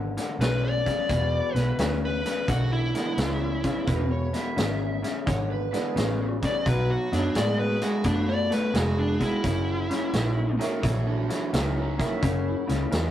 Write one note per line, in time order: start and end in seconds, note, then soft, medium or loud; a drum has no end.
0.00 0.15 G#1 medium
0.00 0.12 E2 medium
0.00 0.13 D3 medium
0.17 0.38 E2 medium
0.17 0.38 D3 medium
0.17 snare soft
0.17 closed hi-hat medium
0.39 0.83 B1 medium
0.39 0.82 E2 medium
0.39 0.82 C#3 medium
0.39 0.63 B4 medium
0.39 snare loud
0.39 closed hi-hat medium
0.65 1.54 D5 medium
0.86 1.07 E2 medium
0.86 1.07 C#3 medium
0.86 kick medium
0.86 snare soft
0.86 closed hi-hat medium
1.09 1.39 E1 medium
1.09 1.51 E2 medium
1.09 1.51 B2 medium
1.09 kick loud
1.09 snare soft
1.09 closed hi-hat medium
1.54 1.70 B1 medium
1.54 1.76 E2 medium
1.54 1.76 B2 medium
1.54 1.99 B4 medium
1.54 snare soft
1.54 closed hi-hat medium
1.78 2.22 D2 medium
1.78 2.20 E2 medium
1.78 2.20 C#3 medium
1.78 snare loud
1.78 closed hi-hat medium
2.05 2.26 B4 medium
2.25 2.46 E2 medium
2.25 2.46 C#3 medium
2.25 2.49 B4 medium
2.25 snare soft
2.25 closed hi-hat medium
2.48 2.92 B1 medium
2.48 2.89 E2 medium
2.48 2.90 D3 medium
2.48 2.71 F#4 medium
2.48 kick loud
2.48 snare soft
2.48 closed hi-hat medium
2.72 4.06 E4 medium
2.94 3.15 E2 medium
2.94 3.16 D3 medium
2.94 3.16 E3 medium
2.94 3.16 G#3 medium
2.94 3.16 B3 medium
2.94 3.16 D4 medium
2.94 snare soft
2.94 closed hi-hat medium
3.17 3.61 C#2 medium
3.17 3.59 E2 medium
3.17 3.60 C#3 medium
3.17 snare loud
3.17 closed hi-hat medium
3.64 3.85 E2 medium
3.64 3.85 C#3 medium
3.64 kick medium
3.64 snare soft
3.64 closed hi-hat medium
3.87 4.31 E1 medium
3.87 4.28 E2 medium
3.87 4.29 B2 medium
3.87 4.10 B4 medium
3.87 kick loud
3.87 snare soft
3.87 closed hi-hat medium
4.12 4.33 C#5 medium
4.33 4.54 E2 medium
4.33 4.55 B2 medium
4.33 5.23 E5 medium
4.33 snare soft
4.33 closed hi-hat medium
4.56 5.01 G#1 medium
4.56 4.98 E2 medium
4.56 4.98 C#3 medium
4.56 snare loud
4.56 closed hi-hat medium
5.02 5.24 E2 medium
5.02 5.24 C#3 medium
5.02 snare soft
5.02 closed hi-hat medium
5.26 5.71 G#1 medium
5.26 5.68 E2 medium
5.26 5.68 D3 medium
5.26 5.50 C#5 medium
5.26 kick loud
5.26 snare soft
5.26 closed hi-hat medium
5.51 5.71 B4 medium
5.72 5.93 E2 medium
5.72 5.94 D3 medium
5.72 6.61 E3 medium
5.72 6.61 G#3 medium
5.72 6.62 B3 medium
5.72 6.32 B4 medium
5.72 6.61 D5 medium
5.72 snare soft
5.72 closed hi-hat medium
5.95 6.40 A1 medium
5.95 6.37 E2 medium
5.95 6.37 C#3 medium
5.95 snare loud
5.95 closed hi-hat medium
6.42 6.63 E2 medium
6.42 6.63 C#3 medium
6.42 6.66 D5 medium
6.42 kick medium
6.42 snare soft
6.42 closed hi-hat medium
6.66 6.95 B1 medium
6.66 7.07 B2 medium
6.66 7.08 F#3 medium
6.66 6.89 B4 medium
6.66 kick loud
6.66 snare soft
6.66 closed hi-hat medium
6.91 7.12 F#4 medium
7.12 7.27 F#2 medium
7.12 7.33 B2 medium
7.12 8.00 F#3 medium
7.12 7.33 F#3 medium
7.12 8.00 B3 medium
7.12 7.35 D4 medium
7.12 8.00 D#4 medium
7.12 snare soft
7.12 closed hi-hat medium
7.35 7.79 A2 medium
7.35 7.77 B2 medium
7.35 7.77 G#3 medium
7.35 7.58 D5 medium
7.35 snare loud
7.35 closed hi-hat medium
7.59 7.81 B4 medium
7.81 8.02 B2 medium
7.81 8.03 G#3 medium
7.81 8.04 F#4 medium
7.81 snare soft
7.81 closed hi-hat medium
8.04 8.49 F#2 medium
8.04 8.47 B2 medium
8.04 8.47 A3 medium
8.04 8.27 D4 medium
8.04 kick loud
8.04 snare soft
8.04 closed hi-hat medium
8.29 8.51 D5 medium
8.50 8.71 B2 medium
8.50 8.72 A3 medium
8.50 8.75 B4 medium
8.50 snare soft
8.50 closed hi-hat medium
8.73 9.18 F1 medium
8.73 9.16 B2 medium
8.73 9.16 G#3 medium
8.73 8.97 F#4 medium
8.73 snare loud
8.73 closed hi-hat medium
8.99 9.21 D4 medium
9.19 9.41 B2 medium
9.19 9.41 G#3 medium
9.19 10.57 E4 medium
9.19 kick medium
9.19 snare soft
9.19 closed hi-hat medium
9.43 9.88 F#1 medium
9.43 9.85 F#2 medium
9.43 9.85 C#3 medium
9.43 kick loud
9.43 snare soft
9.43 closed hi-hat medium
9.90 10.11 F#2 medium
9.90 10.11 C#3 medium
9.90 snare soft
9.90 closed hi-hat medium
10.13 10.58 A#1 medium
10.13 10.55 F#2 medium
10.13 10.55 D#3 medium
10.13 snare loud
10.13 closed hi-hat medium
10.59 10.81 F#2 medium
10.59 10.81 D#3 medium
10.59 10.80 F#3 medium
10.59 10.80 A#3 medium
10.59 10.81 C#4 medium
10.59 10.82 F#4 medium
10.59 10.82 A4 medium
10.59 10.81 E5 medium
10.59 snare soft
10.59 closed hi-hat medium
10.82 11.27 A#1 medium
10.82 11.24 F#2 medium
10.82 11.25 E3 medium
10.82 11.05 F#4 medium
10.82 11.06 A4 medium
10.82 kick loud
10.82 snare soft
10.82 closed hi-hat medium
11.06 11.28 D4 medium
11.06 11.29 F#4 medium
11.29 11.50 F#2 medium
11.29 11.50 E3 medium
11.29 11.52 D4 medium
11.29 11.53 F#4 medium
11.29 snare soft
11.29 closed hi-hat medium
11.53 11.97 C#2 medium
11.53 11.94 F#2 medium
11.53 11.95 D#3 medium
11.53 11.75 C#4 medium
11.53 11.76 E4 medium
11.53 snare loud
11.53 closed hi-hat medium
11.76 11.98 C#4 medium
11.76 11.99 E4 medium
11.98 12.20 F#2 medium
11.98 12.20 D#3 medium
11.98 12.20 F#3 medium
11.98 12.20 A#3 medium
11.98 12.20 C#4 medium
11.98 13.11 E4 medium
11.98 12.20 E5 medium
11.98 kick medium
11.98 snare soft
11.98 closed hi-hat medium
12.21 12.52 F#1 medium
12.21 12.63 F#2 medium
12.21 12.64 C#3 medium
12.21 kick loud
12.21 snare soft
12.21 closed hi-hat medium
12.67 12.84 C#2 medium
12.67 12.89 F#2 medium
12.67 12.89 C#3 medium
12.67 snare soft
12.67 closed hi-hat medium
12.91 13.11 E2 medium
12.91 13.11 F#2 medium
12.91 13.11 D#3 medium
12.91 snare loud
12.91 closed hi-hat medium